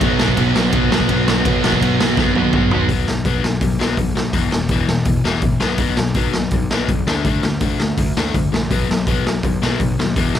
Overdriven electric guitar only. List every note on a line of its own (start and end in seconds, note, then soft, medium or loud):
0.03 0.21 B2 loud
0.03 0.22 F#3 loud
0.03 0.22 B3 loud
0.22 0.39 B2 medium
0.22 0.40 F#3 loud
0.22 0.40 B3 medium
0.40 0.56 B2 medium
0.40 0.57 F#3 medium
0.40 0.57 B3 loud
0.56 0.74 B2 medium
0.56 0.75 F#3 medium
0.56 0.75 B3 medium
0.74 0.91 B2 medium
0.74 0.92 F#3 loud
0.74 0.92 B3 loud
0.92 1.10 B2 medium
0.92 1.10 F#3 medium
0.92 1.10 B3 medium
1.10 1.28 B2 medium
1.10 1.28 F#3 medium
1.10 1.28 B3 medium
1.28 1.46 B2 medium
1.28 1.46 F#3 medium
1.28 1.47 B3 loud
1.47 1.64 B2 medium
1.47 1.64 F#3 loud
1.47 1.65 B3 loud
1.65 1.81 B2 medium
1.65 1.82 F#3 medium
1.65 1.82 B3 medium
1.83 1.99 B2 medium
1.83 2.00 F#3 medium
1.83 2.00 B3 medium
2.00 2.17 B2 medium
2.00 2.17 F#3 medium
2.00 2.18 B3 medium
2.18 2.35 B2 medium
2.18 2.36 F#3 loud
2.18 2.36 B3 loud
2.37 2.53 B2 medium
2.37 2.54 F#3 medium
2.37 2.54 B3 loud
2.54 2.72 B2 medium
2.54 2.72 F#3 medium
2.54 2.73 B3 medium
2.73 2.89 B2 medium
2.73 2.89 F#3 medium
2.73 2.90 B3 medium
2.91 3.07 B2 medium
2.91 3.07 F#3 medium
2.91 3.07 B3 medium
3.09 3.24 B2 medium
3.09 3.24 F#3 medium
3.26 3.41 B2 medium
3.26 3.41 F#3 medium
3.26 3.43 B3 loud
3.42 3.59 B2 medium
3.42 3.59 F#3 medium
3.61 3.78 B2 medium
3.61 3.78 F#3 medium
3.79 3.96 B2 medium
3.79 3.97 F#3 medium
3.79 3.97 B3 loud
3.98 4.14 B2 medium
3.98 4.14 F#3 medium
4.15 4.32 B2 medium
4.15 4.32 F#3 medium
4.33 4.51 E2 medium
4.33 4.51 B2 medium
4.33 4.51 E3 medium
4.52 4.68 E2 medium
4.52 4.69 B2 medium
4.71 4.87 E2 medium
4.71 4.88 B2 medium
4.71 4.88 E3 medium
4.88 5.05 E2 medium
4.88 5.05 B2 medium
5.07 5.23 E2 medium
5.07 5.23 B2 medium
5.24 5.41 E2 medium
5.24 5.42 B2 medium
5.24 5.42 E3 loud
5.43 5.59 E2 medium
5.43 5.59 B2 medium
5.60 5.77 B2 medium
5.60 5.78 F#3 medium
5.60 5.78 B3 loud
5.78 5.96 B2 loud
5.78 5.96 F#3 medium
5.78 5.96 B3 loud
5.97 6.14 B2 medium
5.97 6.14 F#3 medium
6.15 6.32 B2 medium
6.15 6.33 F#3 medium
6.15 6.33 B3 medium
6.34 6.50 B2 medium
6.34 6.50 F#3 medium
6.54 6.69 B2 medium
6.54 6.69 F#3 medium
6.72 6.88 B2 medium
6.72 6.88 F#3 medium
6.72 6.88 B3 loud
6.89 7.05 B2 medium
6.89 7.05 F#3 medium
7.07 7.24 D3 loud
7.07 7.24 A3 loud
7.07 7.24 D4 loud
7.26 7.42 D3 medium
7.26 7.42 A3 medium
7.26 7.43 D4 loud
7.45 7.60 D3 medium
7.45 7.60 A3 medium
7.62 7.78 D3 medium
7.62 7.79 A3 medium
7.62 7.79 D4 loud
7.80 7.96 D3 medium
7.80 7.96 A3 medium
7.98 8.14 D3 medium
7.98 8.14 A3 medium
8.17 8.33 D3 medium
8.17 8.34 A3 medium
8.17 8.34 D4 medium
8.35 8.51 D3 medium
8.35 8.51 A3 medium
8.52 8.69 D3 medium
8.52 8.69 A3 medium
8.71 8.88 B2 medium
8.71 8.88 F#3 medium
8.71 8.88 B3 loud
8.89 9.05 B2 medium
8.89 9.05 F#3 medium
9.08 9.24 B2 medium
9.08 9.25 F#3 medium
9.08 9.25 B3 medium
9.26 9.42 B2 medium
9.26 9.42 F#3 medium
9.45 9.60 B2 medium
9.45 9.60 F#3 medium
9.62 9.79 B2 medium
9.62 9.79 F#3 medium
9.62 9.79 B3 medium
9.81 9.97 B2 medium
9.81 9.97 F#3 medium
9.99 10.15 B2 medium
9.99 10.15 F#3 medium
10.17 10.34 E2 medium
10.17 10.34 B2 loud
10.17 10.34 E3 loud
10.35 10.39 E2 medium
10.35 10.39 B2 medium